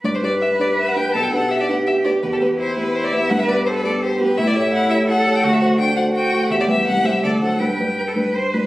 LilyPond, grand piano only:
\new Staff \with { instrumentName = "Grand piano" } { \time 3/4 \key g \major \tempo 4 = 167 g,8 <d' g' b'>4 <d' g' b'>4 <d' g' b'>8 | b,,8 <d' g' b'>4 <d' g' b'>4 <d' g' b'>8 | e,8 <b g' b'>4 <b g' b'>4 <b g' b'>8 | g,8 <b g' b'>4 <b g' b'>4 <b g' b'>8 |
a,8 <a g' cis''>4 <a g' cis''>4 <a g' cis''>8 | d,8 <a fis' c''>4 <a fis' c''>4 <a fis' c''>8 | e,8 <g g' b'>8 c,8 <g g' c''>8 d,8 <fis d' c''>8 | g,8 <g d' b'>4 <g d' b'>4 <g d' b'>8 | }